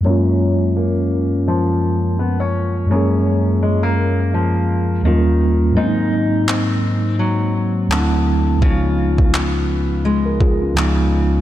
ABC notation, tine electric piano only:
X:1
M:4/4
L:1/16
Q:"Swing 16ths" 1/4=84
K:F#
V:1 name="Tine electric piano"
z16 | z16 | z16 | z8 z A [EG] [CE]2 z3 |]
V:2 name="Tine electric piano"
[F,,G,A,CE]16 | [F,,G,A,CG]12 [D,,F,=G,A,CE]4 | [G,,F,A,^B,CD]12 [=D,,F,=A,=C=D=E]4 | [C,,E,G,B,D]12 [C,,E,G,B,D]4 |]